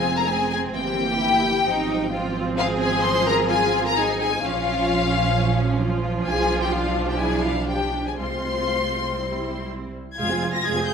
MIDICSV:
0, 0, Header, 1, 6, 480
1, 0, Start_track
1, 0, Key_signature, -4, "minor"
1, 0, Tempo, 460829
1, 784, Time_signature, 4, 2, 24, 8
1, 7509, Tempo, 495868
1, 10389, Tempo, 469116
1, 11159, End_track
2, 0, Start_track
2, 0, Title_t, "Violin section"
2, 0, Program_c, 0, 48
2, 0, Note_on_c, 0, 80, 103
2, 177, Note_off_c, 0, 80, 0
2, 187, Note_on_c, 0, 82, 107
2, 296, Note_on_c, 0, 80, 102
2, 307, Note_off_c, 0, 82, 0
2, 519, Note_off_c, 0, 80, 0
2, 532, Note_on_c, 0, 80, 100
2, 615, Note_off_c, 0, 80, 0
2, 772, Note_on_c, 0, 79, 118
2, 2411, Note_off_c, 0, 79, 0
2, 2693, Note_on_c, 0, 77, 115
2, 2776, Note_off_c, 0, 77, 0
2, 2938, Note_on_c, 0, 80, 108
2, 3171, Note_off_c, 0, 80, 0
2, 3174, Note_on_c, 0, 84, 107
2, 3414, Note_off_c, 0, 84, 0
2, 3418, Note_on_c, 0, 82, 122
2, 3501, Note_off_c, 0, 82, 0
2, 3653, Note_on_c, 0, 80, 109
2, 4007, Note_off_c, 0, 80, 0
2, 4026, Note_on_c, 0, 82, 115
2, 4138, Note_off_c, 0, 82, 0
2, 4144, Note_on_c, 0, 80, 105
2, 4370, Note_off_c, 0, 80, 0
2, 4382, Note_on_c, 0, 80, 109
2, 4615, Note_off_c, 0, 80, 0
2, 4622, Note_on_c, 0, 77, 113
2, 6298, Note_off_c, 0, 77, 0
2, 6533, Note_on_c, 0, 80, 106
2, 6869, Note_off_c, 0, 80, 0
2, 6902, Note_on_c, 0, 79, 84
2, 7013, Note_on_c, 0, 77, 87
2, 7017, Note_off_c, 0, 79, 0
2, 7380, Note_off_c, 0, 77, 0
2, 7384, Note_on_c, 0, 79, 77
2, 7498, Note_on_c, 0, 80, 97
2, 7504, Note_off_c, 0, 79, 0
2, 7736, Note_off_c, 0, 80, 0
2, 7738, Note_on_c, 0, 77, 85
2, 7971, Note_off_c, 0, 77, 0
2, 7977, Note_on_c, 0, 79, 82
2, 8329, Note_off_c, 0, 79, 0
2, 8350, Note_on_c, 0, 80, 72
2, 8396, Note_off_c, 0, 80, 0
2, 8466, Note_on_c, 0, 84, 92
2, 9885, Note_off_c, 0, 84, 0
2, 10375, Note_on_c, 0, 92, 95
2, 10719, Note_off_c, 0, 92, 0
2, 10744, Note_on_c, 0, 94, 94
2, 10860, Note_on_c, 0, 92, 100
2, 10864, Note_off_c, 0, 94, 0
2, 11088, Note_on_c, 0, 91, 110
2, 11102, Note_off_c, 0, 92, 0
2, 11159, Note_off_c, 0, 91, 0
2, 11159, End_track
3, 0, Start_track
3, 0, Title_t, "Violin section"
3, 0, Program_c, 1, 48
3, 0, Note_on_c, 1, 68, 82
3, 180, Note_off_c, 1, 68, 0
3, 182, Note_on_c, 1, 70, 85
3, 297, Note_on_c, 1, 68, 101
3, 304, Note_off_c, 1, 70, 0
3, 527, Note_off_c, 1, 68, 0
3, 539, Note_on_c, 1, 68, 95
3, 622, Note_off_c, 1, 68, 0
3, 776, Note_on_c, 1, 67, 91
3, 2413, Note_off_c, 1, 67, 0
3, 2687, Note_on_c, 1, 65, 93
3, 2770, Note_off_c, 1, 65, 0
3, 2929, Note_on_c, 1, 68, 95
3, 3167, Note_off_c, 1, 68, 0
3, 3167, Note_on_c, 1, 72, 110
3, 3403, Note_on_c, 1, 70, 101
3, 3405, Note_off_c, 1, 72, 0
3, 3649, Note_off_c, 1, 70, 0
3, 3650, Note_on_c, 1, 68, 99
3, 4002, Note_on_c, 1, 70, 88
3, 4005, Note_off_c, 1, 68, 0
3, 4053, Note_off_c, 1, 70, 0
3, 4133, Note_on_c, 1, 68, 94
3, 4360, Note_off_c, 1, 68, 0
3, 4373, Note_on_c, 1, 68, 98
3, 4456, Note_off_c, 1, 68, 0
3, 4611, Note_on_c, 1, 65, 93
3, 6258, Note_off_c, 1, 65, 0
3, 6541, Note_on_c, 1, 68, 89
3, 6874, Note_off_c, 1, 68, 0
3, 6890, Note_on_c, 1, 67, 79
3, 7013, Note_off_c, 1, 67, 0
3, 7019, Note_on_c, 1, 65, 80
3, 7380, Note_on_c, 1, 67, 72
3, 7383, Note_off_c, 1, 65, 0
3, 7505, Note_off_c, 1, 67, 0
3, 7506, Note_on_c, 1, 68, 85
3, 7730, Note_on_c, 1, 65, 71
3, 7735, Note_off_c, 1, 68, 0
3, 7807, Note_off_c, 1, 65, 0
3, 7967, Note_on_c, 1, 67, 70
3, 8322, Note_on_c, 1, 68, 62
3, 8324, Note_off_c, 1, 67, 0
3, 8451, Note_off_c, 1, 68, 0
3, 8461, Note_on_c, 1, 72, 72
3, 9882, Note_off_c, 1, 72, 0
3, 10390, Note_on_c, 1, 77, 68
3, 10391, Note_on_c, 1, 65, 68
3, 10502, Note_off_c, 1, 77, 0
3, 10503, Note_off_c, 1, 65, 0
3, 10518, Note_on_c, 1, 68, 57
3, 10518, Note_on_c, 1, 80, 59
3, 10633, Note_on_c, 1, 65, 63
3, 10633, Note_on_c, 1, 77, 61
3, 10635, Note_off_c, 1, 68, 0
3, 10635, Note_off_c, 1, 80, 0
3, 10752, Note_off_c, 1, 65, 0
3, 10752, Note_off_c, 1, 77, 0
3, 10757, Note_on_c, 1, 68, 60
3, 10758, Note_on_c, 1, 80, 59
3, 10862, Note_on_c, 1, 77, 60
3, 10864, Note_on_c, 1, 65, 62
3, 10874, Note_off_c, 1, 68, 0
3, 10874, Note_off_c, 1, 80, 0
3, 10976, Note_off_c, 1, 77, 0
3, 10977, Note_off_c, 1, 65, 0
3, 10994, Note_on_c, 1, 80, 63
3, 10995, Note_on_c, 1, 68, 59
3, 11110, Note_off_c, 1, 68, 0
3, 11110, Note_off_c, 1, 80, 0
3, 11118, Note_on_c, 1, 65, 62
3, 11122, Note_on_c, 1, 77, 61
3, 11159, Note_off_c, 1, 65, 0
3, 11159, Note_off_c, 1, 77, 0
3, 11159, End_track
4, 0, Start_track
4, 0, Title_t, "Cello section"
4, 0, Program_c, 2, 48
4, 0, Note_on_c, 2, 65, 82
4, 297, Note_on_c, 2, 60, 85
4, 304, Note_off_c, 2, 65, 0
4, 1247, Note_on_c, 2, 64, 86
4, 1253, Note_off_c, 2, 60, 0
4, 1718, Note_off_c, 2, 64, 0
4, 1731, Note_on_c, 2, 63, 95
4, 2201, Note_off_c, 2, 63, 0
4, 2202, Note_on_c, 2, 65, 90
4, 2676, Note_off_c, 2, 65, 0
4, 2686, Note_on_c, 2, 68, 99
4, 3632, Note_off_c, 2, 68, 0
4, 3652, Note_on_c, 2, 65, 95
4, 4130, Note_on_c, 2, 63, 92
4, 4133, Note_off_c, 2, 65, 0
4, 4615, Note_off_c, 2, 63, 0
4, 4621, Note_on_c, 2, 61, 89
4, 5560, Note_off_c, 2, 61, 0
4, 5578, Note_on_c, 2, 61, 83
4, 6045, Note_off_c, 2, 61, 0
4, 6050, Note_on_c, 2, 65, 91
4, 7503, Note_off_c, 2, 65, 0
4, 7506, Note_on_c, 2, 64, 77
4, 7977, Note_off_c, 2, 64, 0
4, 7978, Note_on_c, 2, 62, 63
4, 8450, Note_off_c, 2, 62, 0
4, 8461, Note_on_c, 2, 60, 62
4, 10118, Note_off_c, 2, 60, 0
4, 10386, Note_on_c, 2, 65, 84
4, 10836, Note_off_c, 2, 65, 0
4, 10864, Note_on_c, 2, 68, 85
4, 11159, Note_off_c, 2, 68, 0
4, 11159, End_track
5, 0, Start_track
5, 0, Title_t, "Viola section"
5, 0, Program_c, 3, 48
5, 0, Note_on_c, 3, 56, 67
5, 0, Note_on_c, 3, 60, 79
5, 740, Note_off_c, 3, 60, 0
5, 741, Note_off_c, 3, 56, 0
5, 774, Note_on_c, 3, 58, 81
5, 777, Note_on_c, 3, 52, 76
5, 1686, Note_off_c, 3, 58, 0
5, 1688, Note_off_c, 3, 52, 0
5, 1731, Note_on_c, 3, 53, 88
5, 1732, Note_on_c, 3, 60, 89
5, 4574, Note_off_c, 3, 53, 0
5, 4574, Note_off_c, 3, 60, 0
5, 4617, Note_on_c, 3, 53, 92
5, 4618, Note_on_c, 3, 61, 88
5, 6495, Note_off_c, 3, 61, 0
5, 6534, Note_on_c, 3, 62, 81
5, 8419, Note_off_c, 3, 62, 0
5, 8421, Note_off_c, 3, 53, 0
5, 8453, Note_on_c, 3, 56, 60
5, 8453, Note_on_c, 3, 65, 60
5, 9386, Note_off_c, 3, 56, 0
5, 9386, Note_off_c, 3, 65, 0
5, 9425, Note_on_c, 3, 55, 60
5, 9425, Note_on_c, 3, 64, 56
5, 10145, Note_off_c, 3, 64, 0
5, 10146, Note_off_c, 3, 55, 0
5, 10387, Note_on_c, 3, 68, 67
5, 10388, Note_on_c, 3, 56, 68
5, 10501, Note_off_c, 3, 56, 0
5, 10501, Note_off_c, 3, 68, 0
5, 10502, Note_on_c, 3, 65, 60
5, 10503, Note_on_c, 3, 60, 58
5, 10625, Note_on_c, 3, 56, 64
5, 10626, Note_on_c, 3, 68, 62
5, 10627, Note_off_c, 3, 65, 0
5, 10628, Note_off_c, 3, 60, 0
5, 10739, Note_on_c, 3, 60, 63
5, 10745, Note_on_c, 3, 65, 59
5, 10748, Note_off_c, 3, 56, 0
5, 10749, Note_off_c, 3, 68, 0
5, 10851, Note_on_c, 3, 56, 68
5, 10853, Note_on_c, 3, 68, 65
5, 10865, Note_off_c, 3, 60, 0
5, 10867, Note_off_c, 3, 65, 0
5, 10969, Note_on_c, 3, 60, 61
5, 10970, Note_off_c, 3, 56, 0
5, 10970, Note_on_c, 3, 65, 58
5, 10971, Note_off_c, 3, 68, 0
5, 11086, Note_on_c, 3, 68, 68
5, 11087, Note_on_c, 3, 56, 69
5, 11097, Note_off_c, 3, 60, 0
5, 11098, Note_off_c, 3, 65, 0
5, 11159, Note_off_c, 3, 56, 0
5, 11159, Note_off_c, 3, 68, 0
5, 11159, End_track
6, 0, Start_track
6, 0, Title_t, "Double bass section"
6, 0, Program_c, 4, 48
6, 0, Note_on_c, 4, 29, 78
6, 742, Note_off_c, 4, 29, 0
6, 778, Note_on_c, 4, 31, 83
6, 1730, Note_off_c, 4, 31, 0
6, 1730, Note_on_c, 4, 32, 86
6, 4615, Note_off_c, 4, 32, 0
6, 4619, Note_on_c, 4, 34, 96
6, 6534, Note_on_c, 4, 35, 86
6, 6537, Note_off_c, 4, 34, 0
6, 8421, Note_off_c, 4, 35, 0
6, 8460, Note_on_c, 4, 36, 68
6, 10152, Note_off_c, 4, 36, 0
6, 10384, Note_on_c, 4, 29, 94
6, 10812, Note_off_c, 4, 29, 0
6, 10868, Note_on_c, 4, 29, 88
6, 11159, Note_off_c, 4, 29, 0
6, 11159, End_track
0, 0, End_of_file